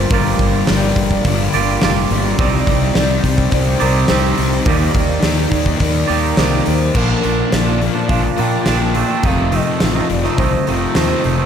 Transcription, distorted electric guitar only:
0.00 0.11 D3 medium
0.00 0.13 G3 medium
0.11 0.68 G2 medium
0.11 0.41 D3 medium
0.11 0.40 G3 loud
0.40 0.69 D3 medium
0.40 0.71 G3 medium
0.69 1.24 G2 medium
0.69 0.98 D3 medium
0.69 0.96 G3 medium
0.97 1.26 D3 medium
0.97 1.28 G3 medium
1.26 1.82 G2 medium
1.26 1.56 D3 medium
1.26 1.54 G3 medium
1.55 1.83 D3 medium
1.55 1.85 G3 medium
1.83 2.37 G2 medium
1.83 2.13 D3 medium
1.83 2.11 G3 medium
2.12 2.38 D3 medium
2.12 2.40 G3 medium
2.39 2.94 C3 medium
2.39 2.70 G3 loud
2.39 2.66 C4 loud
2.67 2.96 G3 medium
2.67 2.97 C4 medium
2.95 3.50 C3 medium
2.95 3.27 G3 medium
2.95 3.24 C4 medium
3.25 3.52 G3 medium
3.25 3.53 C4 medium
3.52 4.06 C3 medium
3.52 3.81 G3 loud
3.52 3.78 C4 loud
3.80 4.08 G3 medium
3.80 4.09 C4 medium
4.07 4.64 C3 medium
4.07 4.38 G3 medium
4.07 4.36 C4 medium
4.37 4.66 G3 medium
4.37 4.64 C4 medium
4.66 5.21 D#3 medium
4.66 4.95 A#3 medium
4.66 4.92 D#4 loud
4.94 5.22 A#3 medium
4.94 5.24 D#4 medium
5.22 5.78 D#3 medium
5.22 5.52 A#3 medium
5.22 5.49 D#4 medium
5.50 5.80 A#3 medium
5.50 5.81 D#4 medium
5.79 6.36 D#3 medium
5.79 6.10 A#3 medium
5.79 6.07 D#4 medium
6.09 6.37 A#3 medium
6.09 6.38 D#4 medium
6.37 6.93 D#3 medium
6.37 6.66 A#3 medium
6.37 6.64 D#4 medium
6.65 6.94 A#3 medium
6.65 6.93 D#4 medium
6.95 7.21 A#2 medium
6.95 7.24 F3 loud
6.95 7.24 A#3 loud
7.23 7.50 A#2 medium
7.23 7.52 F3 medium
7.23 7.53 A#3 medium
7.51 7.78 A#2 loud
7.51 7.67 F3 medium
7.51 7.63 A#3 loud
7.64 7.80 F3 soft
7.64 7.81 A#3 medium
7.79 8.23 A#2 medium
7.79 7.96 F3 medium
7.79 7.93 A#3 medium
7.94 8.24 F3 medium
7.94 8.22 A#3 medium
8.24 muted distorted electric guitar stroke medium
8.36 8.65 A#2 medium
8.36 8.67 F3 medium
8.36 8.67 A#3 medium
8.66 8.93 A#2 medium
8.66 8.83 F3 medium
8.66 8.79 A#3 medium
8.80 8.95 F3 medium
8.80 8.96 A#3 medium
8.95 9.22 A#2 medium
8.95 9.11 F3 medium
8.95 9.08 A#3 medium
9.09 9.26 F3 medium
9.09 9.22 A#3 medium
9.23 9.50 F2 medium
9.23 9.52 C3 loud
9.23 9.54 F3 medium
9.51 9.78 F2 medium
9.51 9.80 C3 medium
9.51 9.82 F3 medium
9.80 10.09 F2 medium
9.80 9.97 C3 medium
9.80 9.95 F3 loud
9.95 10.11 C3 medium
9.95 10.12 F3 medium
10.10 10.53 F2 medium
10.10 10.26 C3 medium
10.10 10.23 F3 medium
10.24 10.53 C3 medium
10.24 10.52 F3 medium
10.53 muted distorted electric guitar stroke medium
10.67 10.94 F2 medium
10.67 10.95 C3 medium
10.67 10.96 F3 medium
10.95 11.22 F2 medium
10.95 11.11 C3 medium
10.95 11.09 F3 loud
11.10 11.24 C3 medium
11.10 11.25 F3 medium
11.24 11.46 F2 medium
11.24 11.39 C3 medium
11.24 11.37 F3 medium
11.38 11.46 C3 medium
11.38 11.46 F3 medium

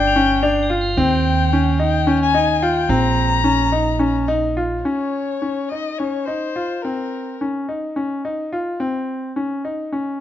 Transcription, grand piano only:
0.00 0.12 D4 medium
0.16 0.40 C#4 medium
0.43 0.67 D4 medium
0.70 0.94 F4 medium
0.97 1.46 C4 medium
1.53 1.77 C#4 medium
1.79 2.04 D#4 medium
2.07 2.31 C#4 medium
2.34 2.59 D#4 medium
2.62 2.86 F4 medium
2.89 3.38 C4 medium
3.44 3.69 C#4 medium
3.72 3.97 D#4 medium
3.99 4.25 C#4 medium
4.28 4.53 D#4 medium
4.57 4.82 F4 medium
4.85 5.35 C#4 medium
5.42 5.67 C#4 soft
5.72 5.96 D#4 soft
6.00 6.24 C#4 soft
6.27 6.52 D#4 medium
6.56 6.80 F4 soft
6.85 7.34 C4 medium
7.41 7.65 C#4 soft
7.69 7.93 D#4 medium
7.96 8.21 C#4 soft
8.25 8.49 D#4 medium
8.53 8.77 F4 medium
8.80 9.30 C4 medium
9.36 9.61 C#4 soft
9.65 9.89 D#4 medium
9.93 10.17 C#4 medium

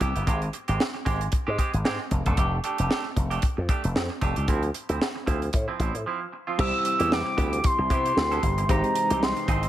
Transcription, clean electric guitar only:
0.00 0.15 B3 medium
0.00 0.15 E4 medium
0.00 0.14 G4 medium
0.15 0.26 B3 soft
0.15 0.27 E4 medium
0.15 0.27 G4 medium
0.27 0.45 G#3 medium
0.27 0.41 C4 medium
0.27 0.40 G4 medium
0.42 muted clean electric guitar stroke soft
0.54 muted clean electric guitar stroke soft
0.68 0.79 G#3 medium
0.68 0.79 C4 medium
0.68 0.80 G4 medium
0.80 muted clean electric guitar stroke soft
0.94 muted clean electric guitar stroke soft
1.05 1.24 G#3 medium
1.05 1.20 C4 medium
1.05 1.20 G4 medium
1.21 muted clean electric guitar stroke soft
1.32 muted clean electric guitar stroke soft
1.47 1.57 G#3 medium
1.47 1.58 C4 medium
1.47 1.58 G4 medium
1.58 1.77 G#3 medium
1.58 1.73 C4 medium
1.58 1.72 G4 medium
1.73 muted clean electric guitar stroke soft
1.85 2.03 G#3 medium
1.85 2.00 C4 medium
1.85 1.99 G4 medium
2.00 muted clean electric guitar stroke soft
2.11 muted clean electric guitar stroke soft
2.26 2.36 A3 soft
2.26 2.37 D4 medium
2.26 2.38 A4 medium
2.37 2.56 A3 medium
2.37 2.56 D4 medium
2.37 2.56 G4 medium
2.64 2.78 A3 medium
2.64 2.78 D4 medium
2.64 2.77 G4 medium
2.78 2.89 A3 medium
2.78 2.90 D4 medium
2.78 2.90 G4 medium
2.90 3.08 A3 medium
2.90 3.05 D4 medium
2.90 3.04 G4 medium
3.05 muted clean electric guitar stroke soft
3.16 muted clean electric guitar stroke soft
3.30 3.43 A3 medium
3.30 3.43 D4 medium
3.30 3.43 G4 medium
3.57 muted clean electric guitar stroke soft
3.69 3.87 A3 medium
3.69 3.83 D4 medium
3.69 3.82 G4 medium
3.84 muted clean electric guitar stroke soft
3.95 muted clean electric guitar stroke soft
4.10 muted clean electric guitar stroke soft
4.21 4.36 A3 medium
4.21 4.36 D4 medium
4.21 4.35 G4 loud
4.36 4.48 A3 soft
4.36 4.49 D4 medium
4.36 4.48 G4 medium
4.48 4.66 F3 medium
4.48 4.63 C4 medium
4.48 4.62 E4 medium
4.63 muted clean electric guitar stroke soft
4.74 muted clean electric guitar stroke soft
4.89 4.99 F3 medium
4.89 5.00 C4 medium
4.89 5.00 E4 medium
5.01 muted clean electric guitar stroke soft
5.16 muted clean electric guitar stroke medium
5.26 5.45 F3 medium
5.26 5.41 C4 medium
5.26 5.40 E4 medium
5.42 muted clean electric guitar stroke soft
5.53 muted clean electric guitar stroke soft
5.68 5.78 F3 soft
5.68 5.79 C4 medium
5.68 5.80 E4 medium
5.79 5.98 F3 medium
5.79 5.95 C4 medium
5.79 5.94 E4 medium
5.95 muted clean electric guitar stroke medium
6.06 6.24 F3 medium
6.06 6.20 C4 medium
6.06 6.20 E4 medium
6.21 muted clean electric guitar stroke soft
6.32 muted clean electric guitar stroke soft
6.47 6.60 F3 medium
6.47 6.58 C4 medium
6.47 6.59 F4 medium
6.59 6.77 B3 medium
6.59 6.73 E4 loud
6.59 6.73 G4 loud
6.74 muted clean electric guitar stroke soft
6.85 muted clean electric guitar stroke medium
6.99 7.10 B3 medium
6.99 7.10 E4 medium
6.99 7.11 G4 medium
7.11 muted clean electric guitar stroke soft
7.26 muted clean electric guitar stroke medium
7.37 7.56 B3 medium
7.37 7.52 E4 medium
7.37 7.51 G4 medium
7.52 muted clean electric guitar stroke medium
7.64 muted clean electric guitar stroke soft
7.79 muted clean electric guitar stroke medium
7.90 8.05 B3 medium
7.90 8.05 E4 loud
7.90 8.04 G4 loud
8.05 8.16 B3 medium
8.05 8.16 E4 medium
8.05 8.17 G4 medium
8.17 muted clean electric guitar stroke soft
8.31 8.42 B3 medium
8.31 8.43 E4 medium
8.31 8.44 A4 medium
8.44 muted clean electric guitar stroke soft
8.58 muted clean electric guitar stroke medium
8.70 8.88 C4 loud
8.70 8.84 D#4 loud
8.70 8.83 G4 loud
8.84 muted clean electric guitar stroke soft
8.96 muted clean electric guitar stroke soft
9.10 9.21 C4 medium
9.10 9.22 D#4 medium
9.10 9.22 G4 medium
9.22 muted clean electric guitar stroke soft
9.37 muted clean electric guitar stroke medium
9.48 9.66 C4 medium
9.48 9.63 D#4 medium
9.48 9.63 G#4 medium
9.63 muted clean electric guitar stroke medium

